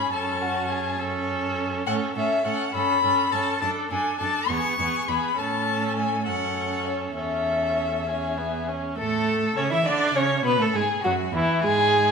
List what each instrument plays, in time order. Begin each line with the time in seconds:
Already playing: cello G#2, viola C#4, violin G#4 B5
0.13 cello F#2, viola C#4, violin A4 A5
0.42 violin F#4
0.70 violin G#4
0.99 viola C#4, violin A4
1.87 cello A2, viola C#4, violin A4 F#5
2.16 cello A2, viola C#4, violin A4 E5
2.45 cello A2, viola C#4, violin A4 F#5
2.74 cello G2, viola C#4, violin A4 B5
3.03 cello G2, viola C#4, violin A4
3.32 cello G2, viola C#4, violin A4 A5
3.61 cello F#2, viola D4, violin A4 A5
3.91 cello F#2, viola D4, violin A4 G#5
4.19 cello F#2, viola D4, violin A4 A5
4.48 cello E2, viola B3, violin G#4 C#6
4.78 cello E2, viola B3, violin G#4
5.08 cello E2, viola B3, violin G#4 B5
5.37 cello A2, viola C#4, violin A4 A5
5.96 violin G#5
6.26 cello F#2, viola C#4, violin A4 F#5
6.86 violin C#5
7.16 cello E2, viola C#4, violin A4 E5
8.07 viola C#4, violin G#4
8.37 viola B3
8.68 viola C#4
8.97 cello A2, viola A3, violin A4
9.56 cello C#3, viola C#4, violin C#5
9.71 cello E3, viola E4, violin E5
9.85 cello D3, viola D4, violin D5
10.15 cello C#3, viola C#4, violin C#5
10.44 cello B2, viola B3, violin B4
10.59 cello A2, viola A3, violin A4
10.73 cello G#2, viola G#3, violin G#4
11.03 cello F#2, viola F#3, violin F#4
11.32 cello E2, viola E3, violin E4
11.62 cello G#2, viola G#3, violin G#4